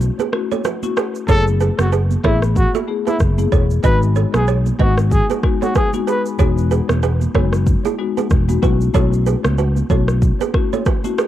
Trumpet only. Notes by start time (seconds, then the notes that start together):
1.29 A4
1.80 F#4
2.25 E4
2.57 F#4
3.07 E4
3.84 B4
4.35 G#4
4.80 F#4
5.12 G#4
5.63 F#4
5.76 G#4
6.08 B4